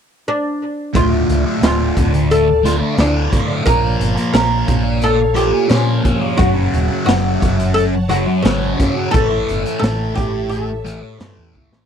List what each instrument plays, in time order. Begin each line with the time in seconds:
0.28 oud D4
0.94 picked electric bass D1, distorted electric guitar D2 A2 D3, oud F4, string machine D5 F5 A5, kick, closed hi-hat
1.10 distorted electric guitar A2 D3
1.29 picked electric bass C#2, closed hi-hat
1.45 distorted electric guitar A2 D3
1.61 picked electric bass D1, distorted electric guitar D2 A2 D3, oud F4, snare, closed hi-hat
1.96 picked electric bass D1, distorted electric guitar D2 A2 D3, kick, closed hi-hat
2.13 muted distorted electric guitar stroke, closed hi-hat
2.31 oud A4, closed hi-hat
2.63 distorted electric guitar D2 A2 D3, oud F4, closed hi-hat
2.81 muted distorted electric guitar stroke
2.97 distorted electric guitar D2 A2 D3, picked electric bass D2, oud D4, snare, closed hi-hat
3.31 distorted electric guitar D2 A2 D3, kick, closed hi-hat
3.48 distorted electric guitar A2 D3
3.64 picked electric bass A#1, distorted electric guitar A#2 F3 A#3, oud A#4, string machine C#5, kick, closed hi-hat
3.82 distorted electric guitar F3 A#3
4.00 picked electric bass G1, closed hi-hat
4.16 distorted electric guitar F3 A#3, closed hi-hat
4.32 picked electric bass A#1, distorted electric guitar A#2 F3 A#3, oud A#4, snare, closed hi-hat
4.67 picked electric bass A#1, distorted electric guitar A#2 F3 A#3, kick, closed hi-hat
4.84 muted distorted electric guitar stroke
5.02 oud A4, closed hi-hat
5.34 distorted electric guitar A#2 F3 A#3, oud G4, closed hi-hat
5.52 muted distorted electric guitar stroke
5.68 distorted electric guitar A#2 F3 A#3, picked electric bass A#2, oud C#4, snare, closed hi-hat
6.03 distorted electric guitar A#2 F3 A#3, kick, closed hi-hat
6.21 distorted electric guitar F3 A#3
6.38 picked electric bass F#1, distorted electric guitar F#2 C#3 F#3, oud F#4, string machine C#5 F#5 A5, kick, closed hi-hat
6.55 distorted electric guitar C#3 F#3
6.74 picked electric bass D#1, closed hi-hat
6.88 distorted electric guitar C#3 F#3
7.06 picked electric bass F#1, distorted electric guitar F#2 C#3 F#3, oud F#4, snare, closed hi-hat
7.40 picked electric bass F#1, distorted electric guitar F#2 C#3 F#3, kick, closed hi-hat
7.58 muted distorted electric guitar stroke, closed hi-hat
7.74 oud A4, closed hi-hat
8.09 distorted electric guitar F#2 C#3 F#3, oud F#4, closed hi-hat
8.27 muted distorted electric guitar stroke
8.43 picked electric bass G#1, distorted electric guitar F#2 C#3 F#3, oud C#4, snare, closed hi-hat
8.78 distorted electric guitar F#2 C#3 F#3, kick, snare, closed hi-hat
8.94 distorted electric guitar C#3 F#3
9.11 picked electric bass A1, distorted electric guitar A2 E3 A3, oud A4, string machine E5, kick, closed hi-hat
9.29 distorted electric guitar E3 A3
9.49 picked electric bass G1, closed hi-hat
9.64 distorted electric guitar E3 A3, closed hi-hat
9.79 picked electric bass A1, distorted electric guitar A2 E3 A3, oud A4, closed hi-hat
9.84 snare
10.15 picked electric bass A1, distorted electric guitar A2 E3 A3, oud G4, kick, closed hi-hat
10.33 muted distorted electric guitar stroke
10.49 oud A4, closed hi-hat
10.84 distorted electric guitar A2 E3 A3, closed hi-hat
11.02 muted distorted electric guitar stroke
11.19 picked electric bass G2, distorted electric guitar A2 E3 A3, snare, closed hi-hat
11.38 picked electric bass E2
11.54 picked electric bass C#2, distorted electric guitar A2 E3 A3, kick
11.71 picked electric bass A1, distorted electric guitar E3 A3, snare